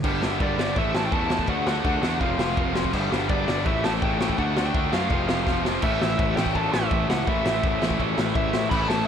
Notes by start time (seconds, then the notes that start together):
0.03 G1 G2 D3 G3 B3 D4, kick, crash
0.22 G1 G2 D3 G3 B3 D4, snare
0.40 G1 G2 D3 G3 B3 D4 D5, kick, ride
0.58 G1 G2 D3 G3 B3 D4, snare
0.76 A1 A2 E3 A3 C#4 E4 E5, kick, ride
0.94 A1 A2 E3 A3 C#4 E4 A5, snare
1.06 G5
1.12 E2 A2 E3 A3 C#4 E4 A5, kick, ride
1.30 A2 E3 A3 C#4 E4, snare
1.39 kick
1.47 D2 D3 A3 D4 F#4 F#5, kick, ride
1.66 D3 A3 D4 F#4 F#5, snare
1.84 D2 D3 A3 D4 F#4, kick, ride
2.02 E2 D3 A3 D4 F#4 F#5, snare
2.20 F1 F2 C3 F3 A3 C4 F4 F5, kick, ride
2.38 F1 F2 C3 F3 A3 C4 F4, snare
2.56 F1 F2 C3 F3 A3 C4 F4, kick, ride
2.73 F2 C3 F3 A3 C4 F4, snare
2.84 kick
2.92 G1 G2 D3 G3 B3 D4, kick, crash
3.11 G1 G2 D3 G3 B3 D4, snare
3.28 G1 G2 D3 G3 B3 D4 D5, kick, ride
3.47 G1 G2 D3 G3 B3 D4, snare
3.65 A1 A2 E3 A3 C#4 E4 E5, kick, ride
3.83 A1 A2 E3 A3 C#4 E4 A5, snare
4.01 A1 A2 E3 A3 C#4 E4 G5, kick, ride
4.19 A2 E3 A3 C#4 E4, snare
4.29 kick
4.38 D2 D3 A3 D4 F#4 F#5, kick, ride
4.56 D3 A3 D4 F#4, snare
4.66 G5
4.73 D2 D3 A3 D4 F#4, kick, ride
4.92 F#2 D3 A3 D4 F#4 F5, snare
5.09 F1 F2 C3 F3 A3 C4 F4, kick, ride
5.28 F1 F2 C3 F3 A3 C4 F4, snare
5.46 F1 F2 C3 F3 A3 C4 F4, kick, snare
5.64 F2 C3 F3 A3 C4 F4, snare
5.82 A1 A2 E3 A3 C#4 E4 E5, kick, crash
6.01 A1 E5, snare
6.19 A1 E5, kick, ride
6.37 A1 A2 E3 A3 C#4 E4 G5, snare
6.46 kick
6.55 A1 A2 E3 A3 A5, kick, ride
6.73 A1 E5, snare
6.91 A1, kick, ride
7.08 C#2 F#5, snare
7.27 A1 A2 E3 A3 C#4 E4 E5, kick, ride
7.46 A1, snare
7.63 A1, kick, ride
7.81 A1 A2 E3 A3 C#4 E4, snare
7.91 kick
7.99 A1 A2 E3 A3, kick, ride
8.18 A1, snare
8.35 A1 E5, kick, ride
8.53 A2, snare
8.71 A1 A2 E3 A3 C#4 E4 B5, kick, crash
8.88 A1 A5, snare